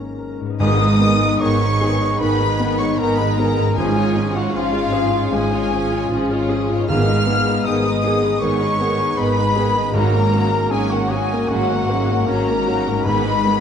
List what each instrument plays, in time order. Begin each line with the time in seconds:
Already playing: double bass section G#1, cello section G#2, harp G#2 F#3 A#3 C#4, grand piano G#2 A#3 C#4 A#4, violin section A#5
0.04 harp A#4
0.19 grand piano A#4
0.32 harp C#4
0.41 harp G#2
0.45 harp B3
0.50 harp D#4
0.54 harp G#4
0.60 double bass section G#1, grand piano G#2, timpani G#2, cello section G#2, viola section D#3 B3, french horn section B3 D#4, violin section B3 G#4 D#6, cor anglais D#5, flute section D#6
0.80 viola section G#3, violin section D#4 B4
0.99 viola section D#3 B3, grand piano B3, violin section B3 G#4
1.21 viola section G#3, violin section D#4 B4
1.40 double bass section G#1, cello section G#2, viola section D#3 B3, violin section B3 G#4 C#6, grand piano D#4, cor anglais C#5, flute section C#6
1.60 viola section G#3, violin section D#4 B4
1.81 viola section D#3 B3, violin section B3 G#4, grand piano G#4
2.01 viola section G#3, violin section D#4 B4
2.18 double bass section G#1, cello section G#2, viola section D#3 B3, grand piano D#3, violin section G#4 B5, cor anglais B4, flute section B5
2.22 violin section B3
2.40 viola section G#3, violin section D#4 B4
2.59 viola section D#3 B3, grand piano B3, violin section B3 G#4
2.78 viola section G#3, violin section D#4 B4 C#6, cor anglais C#5, flute section C#6
2.97 double bass section G#1, cello section G#2, viola section D#3 B3, violin section B3 G#4 A#5, grand piano D#4, cor anglais A#4, flute section A#5
3.17 viola section G#3, violin section D#4 B4 B5, cor anglais B4, flute section B5
3.35 viola section D#3 B3, violin section B3 G#4 A#5, flute section A#5
3.39 grand piano G#4, cor anglais A#4
3.57 harp G#2, viola section G#3, violin section D#4 B4
3.63 harp C#4
3.68 harp F4
3.72 viola section F3 C#4, harp G#4, violin section G#4 G#5, flute section G#5
3.77 double bass section G#1, cello section G#2, timpani G#2, grand piano G#2, french horn section C#4 F4, cor anglais G#4
3.95 viola section G#3 F4, violin section F4 C#5
4.15 viola section F3 C#4, grand piano C#4, violin section G#4
4.34 viola section G#3 F4, violin section F4 C#5 F#5, cor anglais F#4, flute section F#5
4.52 double bass section G#1, cello section G#2, viola section F3 C#4, cor anglais F4, grand piano F4, violin section G#4 F5, flute section F5
4.73 viola section G#3 F4, violin section F4 C#5
4.91 viola section F3 C#4, grand piano G#4, violin section G#4
5.11 viola section G#3 F4, violin section F4 C#5
5.31 double bass section G#1, cello section G#2, viola section F3 C#4, grand piano G#3, violin section G#4 G#5, cor anglais G#4, flute section G#5
5.51 viola section G#3 F4, violin section F4 C#5
5.71 viola section F3 C#4, grand piano C#4, violin section G#4
5.90 viola section G#3 F4, violin section F4 C#5
6.09 double bass section G#1, cello section G#2, viola section F3 C#4, grand piano F4, violin section G#4
6.30 viola section G#3 F4, violin section F4 C#5
6.49 viola section F3 C#4, grand piano G#4, violin section G#4
6.69 harp G#2, viola section G#3 F4, violin section F4 C#5
6.75 harp B3
6.80 harp D#4
6.84 harp G#4
6.88 double bass section G#1, grand piano G#2, cello section G#2, timpani G#2, viola section D#3 B3, violin section B3 G#4 F6, french horn section B3 G#4, cor anglais F5, flute section F6
7.08 viola section G#3, violin section D#4 B4
7.26 viola section D#3 B3, grand piano B3, violin section B3 G#4
7.47 viola section G#3, violin section D#4 B4
7.64 double bass section G#1, cello section G#2, viola section D#3 B3, violin section B3 G#4 D#6, grand piano D#4, cor anglais D#5, flute section D#6
7.83 viola section G#3, violin section D#4 B4
8.02 viola section D#3 B3, violin section B3 G#4, grand piano G#4
8.22 viola section G#3, violin section D#4 B4
8.40 double bass section G#1, cello section G#2, viola section D#3 B3, grand piano D#3, violin section B3 G#4 C#6, cor anglais C#5, flute section C#6
8.60 viola section G#3, violin section D#4 B4
8.79 viola section D#3 B3, violin section B3 G#4, grand piano B3
8.97 viola section G#3, violin section D#4 B4
9.16 double bass section G#1, cello section G#2, viola section D#3 B3, violin section B3 G#4 B5, grand piano D#4, cor anglais B4, flute section B5
9.37 viola section G#3, violin section D#4 B4
9.56 viola section D#3 B3, violin section B3 G#4, grand piano G#4
9.75 harp G#2, viola section G#3, violin section D#4 B4
9.81 harp A#3
9.85 harp C#4
9.90 grand piano G#2, timpani G#2, violin section A#3 F#4, harp F#4, french horn section F#4, cor anglais A#4, flute section A#5
9.94 double bass section G#1, cello section G#2, viola section F#3 C#4, french horn section A#3, violin section A#5
10.12 viola section A#3, violin section C#4 A#4
10.32 viola section F#3 C#4, grand piano A#3, violin section A#3 F#4
10.52 viola section A#3, violin section C#4 A#4
10.70 double bass section G#1, cello section G#2, viola section F#3 C#4, violin section A#3 F#4 G#5, grand piano C#4, cor anglais G#4, flute section G#5
10.90 viola section A#3, violin section C#4 A#4 F#5, cor anglais F#4, flute section F#5
11.09 violin section A#3 F#4 G#5, grand piano F#4, cor anglais G#4, flute section G#5
11.13 viola section F#3 C#4
11.31 viola section A#3, violin section C#4 A#4
11.48 double bass section G#1, grand piano G#2, cello section G#2, viola section F#3 C#4, violin section A#3 F#4 F#5, cor anglais F#4, flute section F#5
11.69 viola section A#3, violin section C#4 A#4
11.89 viola section F#3 C#4, grand piano A#3, violin section A#3 F#4
12.07 viola section A#3, violin section C#4 A#4
12.25 double bass section G#1, cello section G#2, violin section A#3 F#4 A#5, grand piano C#4, cor anglais A#4, flute section A#5
12.30 viola section F#3 C#4
12.46 viola section A#3, violin section C#4 A#4
12.66 viola section F#3 C#4, violin section A#3 F#4, grand piano F#4
12.85 harp G#2, viola section A#3, violin section C#4 A#4
12.91 harp G#3
12.96 harp D#4
13.01 french horn section G#3 D#4, harp G#4, cor anglais B4, flute section B5
13.05 double bass section G#1, cello section G#2, grand piano G#2, timpani G#2, viola section D#3 B3, violin section B3 G#4 B5
13.24 viola section G#3, violin section D#4 B4
13.44 viola section D#3 B3, grand piano G#3, violin section B3 G#4